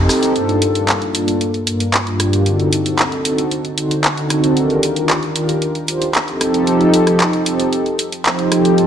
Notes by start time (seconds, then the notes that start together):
0.09 cross-stick, open hi-hat, shaker
0.23 closed hi-hat, shaker
0.36 closed hi-hat
0.49 closed hi-hat
0.62 closed hi-hat
0.75 closed hi-hat
0.88 clap, closed hi-hat
1.02 closed hi-hat
1.15 closed hi-hat
1.28 closed hi-hat
1.41 closed hi-hat
1.54 closed hi-hat
1.67 closed hi-hat
1.80 closed hi-hat
1.94 clap, closed hi-hat
2.07 closed hi-hat
2.20 cross-stick, closed hi-hat
2.33 closed hi-hat
2.46 closed hi-hat
2.60 closed hi-hat
2.73 closed hi-hat
2.86 closed hi-hat
2.99 clap, closed hi-hat
3.12 closed hi-hat
3.25 closed hi-hat
3.38 closed hi-hat
3.51 closed hi-hat
3.65 closed hi-hat
3.78 closed hi-hat
3.91 closed hi-hat
4.04 clap, closed hi-hat
4.17 closed hi-hat
4.30 cross-stick, closed hi-hat
4.44 closed hi-hat
4.57 closed hi-hat
4.70 closed hi-hat
4.83 closed hi-hat
4.96 closed hi-hat
5.09 clap, closed hi-hat
5.23 closed hi-hat
5.36 closed hi-hat
5.49 closed hi-hat
5.62 closed hi-hat
5.75 closed hi-hat
5.88 closed hi-hat
6.02 closed hi-hat
6.15 clap, closed hi-hat
6.28 closed hi-hat
6.41 cross-stick, closed hi-hat
6.54 closed hi-hat
6.67 closed hi-hat
6.81 closed hi-hat
6.94 closed hi-hat
7.07 cross-stick, closed hi-hat
7.20 clap, closed hi-hat
7.33 closed hi-hat
7.46 closed hi-hat
7.60 closed hi-hat
7.73 closed hi-hat
7.86 closed hi-hat
7.99 closed hi-hat
8.12 closed hi-hat
8.25 clap, closed hi-hat
8.39 closed hi-hat
8.52 cross-stick, closed hi-hat
8.65 closed hi-hat
8.78 closed hi-hat